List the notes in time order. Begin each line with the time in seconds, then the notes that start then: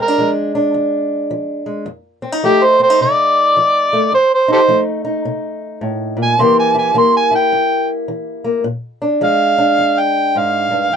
Already playing: A#2 G#3
0.02 A#4
0.08 D4
0.18 F3 G#3
0.55 D4
0.74 F2
1.31 F3
1.66 G#3
1.86 F2
2.22 C4
2.32 D#4
2.43 F3 A3 G4
2.64 C5
2.80 C4 C5
2.90 D#4
3.01 C3 D5
3.57 F3
3.93 A3
4.12 F2 C5
4.34 C5
4.48 D#4
4.52 G4 A4 C5
4.68 F3 A3
5.05 D#4
5.25 C3
5.81 A2
6.17 A#2
6.23 G#5
6.39 C3 E3 A#3 E4 G4 C6
6.59 G#5
6.75 E4 G#5
6.94 E3 A#3 C6
7.17 G#5
7.31 E4 G5
7.52 G2
8.08 E3
8.44 A#3
8.64 A#2
9.02 D4
9.21 F3 G#3 F5
9.58 D4
9.78 F2
10.00 G5
10.35 G#2 F5
10.71 G2
10.92 F2